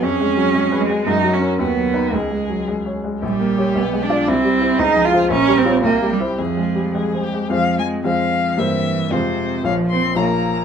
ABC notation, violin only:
X:1
M:2/4
L:1/8
Q:1/4=113
K:C#mix
V:1 name="Violin"
G4 | F2 F2 | G3 z | [K:Fm] G4 |
=E2 A2 | B2 G2 | A2 A G | f a f2 |
=e2 c2 | f c' b2 |]